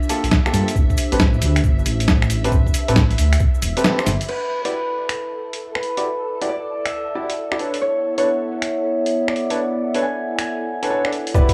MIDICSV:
0, 0, Header, 1, 7, 480
1, 0, Start_track
1, 0, Key_signature, 1, "minor"
1, 0, Tempo, 441176
1, 823, Time_signature, 4, 2, 24, 8
1, 12552, End_track
2, 0, Start_track
2, 0, Title_t, "Harp"
2, 0, Program_c, 0, 46
2, 4665, Note_on_c, 0, 71, 88
2, 5055, Note_off_c, 0, 71, 0
2, 5059, Note_on_c, 0, 71, 84
2, 6255, Note_off_c, 0, 71, 0
2, 6259, Note_on_c, 0, 71, 83
2, 7062, Note_on_c, 0, 74, 82
2, 7459, Note_on_c, 0, 76, 84
2, 8489, Note_off_c, 0, 71, 0
2, 8503, Note_on_c, 0, 73, 93
2, 8568, Note_off_c, 0, 74, 0
2, 8896, Note_off_c, 0, 73, 0
2, 8900, Note_on_c, 0, 73, 85
2, 9333, Note_off_c, 0, 76, 0
2, 10099, Note_on_c, 0, 74, 83
2, 10165, Note_off_c, 0, 73, 0
2, 10903, Note_on_c, 0, 80, 84
2, 11298, Note_off_c, 0, 80, 0
2, 11302, Note_on_c, 0, 80, 89
2, 12109, Note_off_c, 0, 74, 0
2, 12344, Note_on_c, 0, 71, 98
2, 12552, Note_off_c, 0, 71, 0
2, 12552, Note_off_c, 0, 80, 0
2, 12552, End_track
3, 0, Start_track
3, 0, Title_t, "String machine"
3, 0, Program_c, 1, 50
3, 0, Note_on_c, 1, 76, 84
3, 4666, Note_on_c, 1, 69, 80
3, 4676, Note_off_c, 1, 76, 0
3, 12357, Note_off_c, 1, 69, 0
3, 12552, End_track
4, 0, Start_track
4, 0, Title_t, "Ambient pad"
4, 0, Program_c, 2, 92
4, 0, Note_on_c, 2, 62, 86
4, 0, Note_on_c, 2, 65, 78
4, 0, Note_on_c, 2, 67, 87
4, 0, Note_on_c, 2, 72, 75
4, 823, Note_off_c, 2, 65, 0
4, 1148, Note_on_c, 2, 76, 86
4, 4662, Note_off_c, 2, 72, 0
4, 4663, Note_on_c, 2, 64, 76
4, 4944, Note_on_c, 2, 69, 78
4, 5273, Note_off_c, 2, 76, 0
4, 5344, Note_on_c, 2, 76, 79
4, 5542, Note_off_c, 2, 62, 0
4, 5569, Note_on_c, 2, 78, 88
4, 6101, Note_off_c, 2, 67, 0
4, 8261, Note_on_c, 2, 59, 78
4, 12552, Note_off_c, 2, 59, 0
4, 12552, Note_off_c, 2, 64, 0
4, 12552, Note_off_c, 2, 69, 0
4, 12552, Note_off_c, 2, 76, 0
4, 12552, Note_off_c, 2, 78, 0
4, 12552, End_track
5, 0, Start_track
5, 0, Title_t, "Grand piano"
5, 0, Program_c, 3, 0
5, 102, Note_on_c, 3, 69, 93
5, 103, Note_on_c, 3, 58, 86
5, 103, Note_on_c, 3, 65, 78
5, 103, Note_on_c, 3, 67, 78
5, 262, Note_off_c, 3, 69, 0
5, 263, Note_off_c, 3, 58, 0
5, 263, Note_off_c, 3, 65, 0
5, 263, Note_off_c, 3, 67, 0
5, 500, Note_on_c, 3, 58, 90
5, 500, Note_on_c, 3, 65, 82
5, 500, Note_on_c, 3, 67, 84
5, 500, Note_on_c, 3, 69, 102
5, 563, Note_off_c, 3, 58, 0
5, 563, Note_off_c, 3, 65, 0
5, 563, Note_off_c, 3, 67, 0
5, 563, Note_off_c, 3, 69, 0
5, 584, Note_on_c, 3, 58, 81
5, 584, Note_on_c, 3, 65, 73
5, 584, Note_on_c, 3, 69, 87
5, 585, Note_on_c, 3, 67, 71
5, 743, Note_off_c, 3, 58, 0
5, 743, Note_off_c, 3, 65, 0
5, 743, Note_off_c, 3, 67, 0
5, 743, Note_off_c, 3, 69, 0
5, 1220, Note_on_c, 3, 60, 86
5, 1220, Note_on_c, 3, 67, 78
5, 1220, Note_on_c, 3, 69, 75
5, 1220, Note_on_c, 3, 71, 94
5, 1308, Note_off_c, 3, 60, 0
5, 1308, Note_off_c, 3, 67, 0
5, 1308, Note_off_c, 3, 69, 0
5, 1308, Note_off_c, 3, 71, 0
5, 2659, Note_on_c, 3, 60, 81
5, 2659, Note_on_c, 3, 67, 73
5, 2659, Note_on_c, 3, 71, 89
5, 2660, Note_on_c, 3, 69, 73
5, 2747, Note_off_c, 3, 67, 0
5, 2748, Note_off_c, 3, 60, 0
5, 2748, Note_off_c, 3, 69, 0
5, 2748, Note_off_c, 3, 71, 0
5, 3137, Note_on_c, 3, 69, 83
5, 3137, Note_on_c, 3, 71, 98
5, 3138, Note_on_c, 3, 60, 91
5, 3138, Note_on_c, 3, 67, 82
5, 3227, Note_off_c, 3, 60, 0
5, 3227, Note_off_c, 3, 67, 0
5, 3227, Note_off_c, 3, 69, 0
5, 3227, Note_off_c, 3, 71, 0
5, 4099, Note_on_c, 3, 60, 78
5, 4100, Note_on_c, 3, 67, 73
5, 4100, Note_on_c, 3, 69, 72
5, 4100, Note_on_c, 3, 71, 88
5, 4167, Note_off_c, 3, 60, 0
5, 4167, Note_off_c, 3, 67, 0
5, 4167, Note_off_c, 3, 69, 0
5, 4167, Note_off_c, 3, 71, 0
5, 4183, Note_on_c, 3, 60, 95
5, 4183, Note_on_c, 3, 69, 89
5, 4183, Note_on_c, 3, 71, 105
5, 4184, Note_on_c, 3, 67, 90
5, 4316, Note_off_c, 3, 71, 0
5, 4317, Note_off_c, 3, 60, 0
5, 4317, Note_off_c, 3, 67, 0
5, 4317, Note_off_c, 3, 69, 0
5, 4340, Note_on_c, 3, 60, 80
5, 4340, Note_on_c, 3, 67, 72
5, 4340, Note_on_c, 3, 69, 71
5, 4340, Note_on_c, 3, 72, 86
5, 4428, Note_off_c, 3, 60, 0
5, 4428, Note_off_c, 3, 67, 0
5, 4428, Note_off_c, 3, 69, 0
5, 4428, Note_off_c, 3, 72, 0
5, 5059, Note_on_c, 3, 64, 75
5, 5059, Note_on_c, 3, 66, 68
5, 5059, Note_on_c, 3, 67, 70
5, 5059, Note_on_c, 3, 74, 84
5, 5147, Note_off_c, 3, 64, 0
5, 5147, Note_off_c, 3, 66, 0
5, 5147, Note_off_c, 3, 67, 0
5, 5147, Note_off_c, 3, 74, 0
5, 6500, Note_on_c, 3, 64, 72
5, 6500, Note_on_c, 3, 66, 68
5, 6500, Note_on_c, 3, 67, 67
5, 6500, Note_on_c, 3, 74, 80
5, 6588, Note_off_c, 3, 64, 0
5, 6588, Note_off_c, 3, 66, 0
5, 6588, Note_off_c, 3, 67, 0
5, 6588, Note_off_c, 3, 74, 0
5, 6980, Note_on_c, 3, 64, 82
5, 6980, Note_on_c, 3, 66, 74
5, 6980, Note_on_c, 3, 67, 75
5, 6980, Note_on_c, 3, 74, 88
5, 7068, Note_off_c, 3, 64, 0
5, 7068, Note_off_c, 3, 66, 0
5, 7068, Note_off_c, 3, 67, 0
5, 7068, Note_off_c, 3, 74, 0
5, 7782, Note_on_c, 3, 64, 79
5, 7782, Note_on_c, 3, 66, 71
5, 7783, Note_on_c, 3, 67, 72
5, 7783, Note_on_c, 3, 74, 88
5, 7942, Note_off_c, 3, 64, 0
5, 7942, Note_off_c, 3, 66, 0
5, 7942, Note_off_c, 3, 67, 0
5, 7943, Note_off_c, 3, 74, 0
5, 8179, Note_on_c, 3, 64, 85
5, 8180, Note_on_c, 3, 66, 77
5, 8180, Note_on_c, 3, 67, 77
5, 8180, Note_on_c, 3, 74, 94
5, 8243, Note_off_c, 3, 64, 0
5, 8243, Note_off_c, 3, 66, 0
5, 8243, Note_off_c, 3, 67, 0
5, 8243, Note_off_c, 3, 74, 0
5, 8264, Note_on_c, 3, 62, 75
5, 8264, Note_on_c, 3, 69, 68
5, 8264, Note_on_c, 3, 71, 67
5, 8264, Note_on_c, 3, 73, 80
5, 8423, Note_off_c, 3, 62, 0
5, 8423, Note_off_c, 3, 69, 0
5, 8423, Note_off_c, 3, 71, 0
5, 8423, Note_off_c, 3, 73, 0
5, 8900, Note_on_c, 3, 62, 79
5, 8900, Note_on_c, 3, 71, 71
5, 8900, Note_on_c, 3, 73, 86
5, 8901, Note_on_c, 3, 69, 72
5, 8988, Note_off_c, 3, 62, 0
5, 8988, Note_off_c, 3, 69, 0
5, 8988, Note_off_c, 3, 71, 0
5, 8988, Note_off_c, 3, 73, 0
5, 10339, Note_on_c, 3, 62, 74
5, 10339, Note_on_c, 3, 69, 68
5, 10339, Note_on_c, 3, 71, 69
5, 10339, Note_on_c, 3, 73, 81
5, 10427, Note_off_c, 3, 62, 0
5, 10427, Note_off_c, 3, 73, 0
5, 10428, Note_off_c, 3, 69, 0
5, 10428, Note_off_c, 3, 71, 0
5, 10820, Note_on_c, 3, 69, 75
5, 10820, Note_on_c, 3, 71, 76
5, 10820, Note_on_c, 3, 73, 93
5, 10821, Note_on_c, 3, 62, 84
5, 10908, Note_off_c, 3, 62, 0
5, 10908, Note_off_c, 3, 69, 0
5, 10908, Note_off_c, 3, 71, 0
5, 10908, Note_off_c, 3, 73, 0
5, 11780, Note_on_c, 3, 62, 76
5, 11780, Note_on_c, 3, 69, 69
5, 11780, Note_on_c, 3, 71, 68
5, 11780, Note_on_c, 3, 73, 84
5, 11846, Note_off_c, 3, 69, 0
5, 11846, Note_off_c, 3, 71, 0
5, 11846, Note_off_c, 3, 73, 0
5, 11847, Note_off_c, 3, 62, 0
5, 11862, Note_on_c, 3, 69, 82
5, 11863, Note_on_c, 3, 62, 90
5, 11863, Note_on_c, 3, 71, 81
5, 11863, Note_on_c, 3, 73, 98
5, 11996, Note_off_c, 3, 62, 0
5, 11996, Note_off_c, 3, 69, 0
5, 11996, Note_off_c, 3, 71, 0
5, 11996, Note_off_c, 3, 73, 0
5, 12019, Note_on_c, 3, 62, 73
5, 12019, Note_on_c, 3, 69, 68
5, 12019, Note_on_c, 3, 74, 81
5, 12020, Note_on_c, 3, 71, 68
5, 12107, Note_off_c, 3, 69, 0
5, 12107, Note_off_c, 3, 74, 0
5, 12108, Note_off_c, 3, 62, 0
5, 12108, Note_off_c, 3, 71, 0
5, 12342, Note_on_c, 3, 64, 98
5, 12343, Note_on_c, 3, 66, 93
5, 12343, Note_on_c, 3, 67, 92
5, 12343, Note_on_c, 3, 74, 112
5, 12552, Note_off_c, 3, 64, 0
5, 12552, Note_off_c, 3, 66, 0
5, 12552, Note_off_c, 3, 67, 0
5, 12552, Note_off_c, 3, 74, 0
5, 12552, End_track
6, 0, Start_track
6, 0, Title_t, "Detuned saw bass"
6, 0, Program_c, 4, 39
6, 259, Note_on_c, 4, 34, 94
6, 320, Note_off_c, 4, 34, 0
6, 582, Note_on_c, 4, 43, 82
6, 697, Note_off_c, 4, 43, 0
6, 823, Note_on_c, 4, 33, 99
6, 938, Note_off_c, 4, 33, 0
6, 1219, Note_on_c, 4, 33, 97
6, 1506, Note_off_c, 4, 33, 0
6, 1541, Note_on_c, 4, 38, 86
6, 1737, Note_off_c, 4, 38, 0
6, 1783, Note_on_c, 4, 31, 80
6, 1978, Note_off_c, 4, 31, 0
6, 2022, Note_on_c, 4, 33, 85
6, 2707, Note_off_c, 4, 33, 0
6, 2743, Note_on_c, 4, 33, 102
6, 2857, Note_off_c, 4, 33, 0
6, 3139, Note_on_c, 4, 33, 96
6, 3427, Note_off_c, 4, 33, 0
6, 3461, Note_on_c, 4, 38, 87
6, 3657, Note_off_c, 4, 38, 0
6, 3942, Note_on_c, 4, 28, 103
6, 4057, Note_off_c, 4, 28, 0
6, 4423, Note_on_c, 4, 31, 96
6, 4538, Note_off_c, 4, 31, 0
6, 12343, Note_on_c, 4, 28, 101
6, 12458, Note_off_c, 4, 28, 0
6, 12552, End_track
7, 0, Start_track
7, 0, Title_t, "Drums"
7, 30, Note_on_c, 9, 69, 25
7, 102, Note_on_c, 9, 46, 103
7, 104, Note_off_c, 9, 69, 0
7, 104, Note_on_c, 9, 69, 78
7, 211, Note_off_c, 9, 46, 0
7, 213, Note_off_c, 9, 69, 0
7, 260, Note_on_c, 9, 42, 68
7, 266, Note_on_c, 9, 69, 39
7, 342, Note_on_c, 9, 38, 112
7, 343, Note_on_c, 9, 36, 113
7, 344, Note_off_c, 9, 69, 0
7, 344, Note_on_c, 9, 69, 50
7, 369, Note_off_c, 9, 42, 0
7, 451, Note_off_c, 9, 38, 0
7, 452, Note_off_c, 9, 36, 0
7, 452, Note_off_c, 9, 69, 0
7, 500, Note_on_c, 9, 26, 53
7, 501, Note_on_c, 9, 69, 24
7, 584, Note_on_c, 9, 46, 106
7, 585, Note_off_c, 9, 69, 0
7, 585, Note_on_c, 9, 69, 88
7, 609, Note_off_c, 9, 26, 0
7, 693, Note_off_c, 9, 46, 0
7, 693, Note_off_c, 9, 69, 0
7, 740, Note_on_c, 9, 42, 68
7, 746, Note_on_c, 9, 69, 36
7, 823, Note_on_c, 9, 36, 108
7, 827, Note_off_c, 9, 69, 0
7, 827, Note_on_c, 9, 69, 49
7, 849, Note_off_c, 9, 42, 0
7, 932, Note_off_c, 9, 36, 0
7, 936, Note_off_c, 9, 69, 0
7, 980, Note_on_c, 9, 36, 58
7, 981, Note_on_c, 9, 69, 26
7, 1057, Note_off_c, 9, 69, 0
7, 1057, Note_on_c, 9, 69, 94
7, 1063, Note_on_c, 9, 46, 103
7, 1088, Note_off_c, 9, 36, 0
7, 1166, Note_off_c, 9, 69, 0
7, 1172, Note_off_c, 9, 46, 0
7, 1220, Note_on_c, 9, 42, 70
7, 1222, Note_on_c, 9, 69, 36
7, 1300, Note_off_c, 9, 69, 0
7, 1300, Note_on_c, 9, 69, 54
7, 1302, Note_on_c, 9, 36, 107
7, 1303, Note_on_c, 9, 38, 110
7, 1328, Note_off_c, 9, 42, 0
7, 1409, Note_off_c, 9, 69, 0
7, 1411, Note_off_c, 9, 36, 0
7, 1412, Note_off_c, 9, 38, 0
7, 1455, Note_on_c, 9, 69, 23
7, 1542, Note_on_c, 9, 46, 113
7, 1544, Note_off_c, 9, 69, 0
7, 1544, Note_on_c, 9, 69, 95
7, 1650, Note_off_c, 9, 46, 0
7, 1653, Note_off_c, 9, 69, 0
7, 1699, Note_on_c, 9, 26, 64
7, 1699, Note_on_c, 9, 42, 68
7, 1699, Note_on_c, 9, 69, 36
7, 1782, Note_on_c, 9, 36, 108
7, 1784, Note_off_c, 9, 69, 0
7, 1784, Note_on_c, 9, 69, 44
7, 1808, Note_off_c, 9, 26, 0
7, 1808, Note_off_c, 9, 42, 0
7, 1891, Note_off_c, 9, 36, 0
7, 1893, Note_off_c, 9, 69, 0
7, 1945, Note_on_c, 9, 69, 23
7, 2021, Note_on_c, 9, 46, 107
7, 2022, Note_off_c, 9, 69, 0
7, 2022, Note_on_c, 9, 69, 85
7, 2130, Note_off_c, 9, 46, 0
7, 2131, Note_off_c, 9, 69, 0
7, 2178, Note_on_c, 9, 42, 68
7, 2181, Note_on_c, 9, 69, 36
7, 2262, Note_on_c, 9, 36, 110
7, 2262, Note_on_c, 9, 38, 111
7, 2263, Note_off_c, 9, 69, 0
7, 2263, Note_on_c, 9, 69, 50
7, 2287, Note_off_c, 9, 42, 0
7, 2371, Note_off_c, 9, 36, 0
7, 2371, Note_off_c, 9, 38, 0
7, 2372, Note_off_c, 9, 69, 0
7, 2419, Note_on_c, 9, 26, 54
7, 2427, Note_on_c, 9, 69, 23
7, 2501, Note_on_c, 9, 46, 107
7, 2506, Note_off_c, 9, 69, 0
7, 2506, Note_on_c, 9, 69, 91
7, 2528, Note_off_c, 9, 26, 0
7, 2610, Note_off_c, 9, 46, 0
7, 2615, Note_off_c, 9, 69, 0
7, 2659, Note_on_c, 9, 42, 69
7, 2665, Note_on_c, 9, 69, 36
7, 2742, Note_on_c, 9, 36, 115
7, 2743, Note_off_c, 9, 69, 0
7, 2743, Note_on_c, 9, 69, 46
7, 2768, Note_off_c, 9, 42, 0
7, 2851, Note_off_c, 9, 36, 0
7, 2851, Note_off_c, 9, 69, 0
7, 2900, Note_on_c, 9, 36, 58
7, 2908, Note_on_c, 9, 69, 28
7, 2981, Note_off_c, 9, 69, 0
7, 2981, Note_on_c, 9, 46, 109
7, 2981, Note_on_c, 9, 69, 83
7, 3008, Note_off_c, 9, 36, 0
7, 3089, Note_off_c, 9, 46, 0
7, 3090, Note_off_c, 9, 69, 0
7, 3137, Note_on_c, 9, 42, 68
7, 3145, Note_on_c, 9, 69, 39
7, 3221, Note_on_c, 9, 38, 112
7, 3222, Note_on_c, 9, 36, 113
7, 3225, Note_off_c, 9, 69, 0
7, 3225, Note_on_c, 9, 69, 54
7, 3246, Note_off_c, 9, 42, 0
7, 3330, Note_off_c, 9, 38, 0
7, 3331, Note_off_c, 9, 36, 0
7, 3334, Note_off_c, 9, 69, 0
7, 3379, Note_on_c, 9, 42, 37
7, 3381, Note_on_c, 9, 69, 25
7, 3462, Note_on_c, 9, 46, 114
7, 3468, Note_off_c, 9, 69, 0
7, 3468, Note_on_c, 9, 69, 81
7, 3487, Note_off_c, 9, 42, 0
7, 3570, Note_off_c, 9, 46, 0
7, 3577, Note_off_c, 9, 69, 0
7, 3619, Note_on_c, 9, 26, 66
7, 3619, Note_on_c, 9, 42, 66
7, 3621, Note_on_c, 9, 69, 35
7, 3697, Note_off_c, 9, 69, 0
7, 3697, Note_on_c, 9, 69, 46
7, 3702, Note_on_c, 9, 36, 111
7, 3728, Note_off_c, 9, 26, 0
7, 3728, Note_off_c, 9, 42, 0
7, 3806, Note_off_c, 9, 69, 0
7, 3811, Note_off_c, 9, 36, 0
7, 3857, Note_on_c, 9, 69, 25
7, 3941, Note_on_c, 9, 46, 110
7, 3942, Note_off_c, 9, 69, 0
7, 3942, Note_on_c, 9, 69, 94
7, 4050, Note_off_c, 9, 46, 0
7, 4051, Note_off_c, 9, 69, 0
7, 4099, Note_on_c, 9, 42, 68
7, 4109, Note_on_c, 9, 69, 35
7, 4182, Note_on_c, 9, 38, 116
7, 4183, Note_off_c, 9, 69, 0
7, 4183, Note_on_c, 9, 69, 51
7, 4208, Note_off_c, 9, 42, 0
7, 4291, Note_off_c, 9, 38, 0
7, 4292, Note_off_c, 9, 69, 0
7, 4337, Note_on_c, 9, 69, 26
7, 4341, Note_on_c, 9, 26, 56
7, 4422, Note_on_c, 9, 38, 58
7, 4422, Note_on_c, 9, 46, 110
7, 4424, Note_off_c, 9, 69, 0
7, 4424, Note_on_c, 9, 69, 87
7, 4449, Note_off_c, 9, 26, 0
7, 4531, Note_off_c, 9, 38, 0
7, 4531, Note_off_c, 9, 46, 0
7, 4533, Note_off_c, 9, 69, 0
7, 4579, Note_on_c, 9, 42, 68
7, 4585, Note_on_c, 9, 69, 36
7, 4663, Note_on_c, 9, 49, 75
7, 4687, Note_off_c, 9, 42, 0
7, 4694, Note_off_c, 9, 69, 0
7, 4771, Note_off_c, 9, 49, 0
7, 5059, Note_on_c, 9, 42, 59
7, 5168, Note_off_c, 9, 42, 0
7, 5540, Note_on_c, 9, 26, 63
7, 5540, Note_on_c, 9, 42, 58
7, 5649, Note_off_c, 9, 26, 0
7, 5649, Note_off_c, 9, 42, 0
7, 6019, Note_on_c, 9, 42, 59
7, 6128, Note_off_c, 9, 42, 0
7, 6259, Note_on_c, 9, 26, 53
7, 6341, Note_on_c, 9, 42, 47
7, 6368, Note_off_c, 9, 26, 0
7, 6450, Note_off_c, 9, 42, 0
7, 6499, Note_on_c, 9, 42, 59
7, 6608, Note_off_c, 9, 42, 0
7, 6980, Note_on_c, 9, 42, 58
7, 7089, Note_off_c, 9, 42, 0
7, 7459, Note_on_c, 9, 26, 65
7, 7459, Note_on_c, 9, 42, 57
7, 7567, Note_off_c, 9, 26, 0
7, 7567, Note_off_c, 9, 42, 0
7, 7938, Note_on_c, 9, 42, 58
7, 8047, Note_off_c, 9, 42, 0
7, 8178, Note_on_c, 9, 26, 53
7, 8262, Note_on_c, 9, 42, 47
7, 8287, Note_off_c, 9, 26, 0
7, 8371, Note_off_c, 9, 42, 0
7, 8419, Note_on_c, 9, 42, 58
7, 8528, Note_off_c, 9, 42, 0
7, 8899, Note_on_c, 9, 42, 59
7, 9008, Note_off_c, 9, 42, 0
7, 9380, Note_on_c, 9, 26, 64
7, 9380, Note_on_c, 9, 42, 60
7, 9488, Note_off_c, 9, 26, 0
7, 9488, Note_off_c, 9, 42, 0
7, 9859, Note_on_c, 9, 42, 56
7, 9968, Note_off_c, 9, 42, 0
7, 10099, Note_on_c, 9, 26, 53
7, 10182, Note_on_c, 9, 42, 46
7, 10207, Note_off_c, 9, 26, 0
7, 10291, Note_off_c, 9, 42, 0
7, 10340, Note_on_c, 9, 42, 57
7, 10448, Note_off_c, 9, 42, 0
7, 10820, Note_on_c, 9, 42, 60
7, 10929, Note_off_c, 9, 42, 0
7, 11300, Note_on_c, 9, 26, 62
7, 11300, Note_on_c, 9, 42, 61
7, 11408, Note_off_c, 9, 26, 0
7, 11408, Note_off_c, 9, 42, 0
7, 11779, Note_on_c, 9, 42, 60
7, 11888, Note_off_c, 9, 42, 0
7, 12020, Note_on_c, 9, 26, 51
7, 12104, Note_on_c, 9, 42, 47
7, 12129, Note_off_c, 9, 26, 0
7, 12213, Note_off_c, 9, 42, 0
7, 12261, Note_on_c, 9, 42, 59
7, 12343, Note_on_c, 9, 36, 119
7, 12349, Note_on_c, 9, 69, 54
7, 12370, Note_off_c, 9, 42, 0
7, 12451, Note_off_c, 9, 36, 0
7, 12458, Note_off_c, 9, 69, 0
7, 12495, Note_on_c, 9, 69, 25
7, 12500, Note_on_c, 9, 36, 60
7, 12501, Note_on_c, 9, 42, 54
7, 12552, Note_off_c, 9, 36, 0
7, 12552, Note_off_c, 9, 42, 0
7, 12552, Note_off_c, 9, 69, 0
7, 12552, End_track
0, 0, End_of_file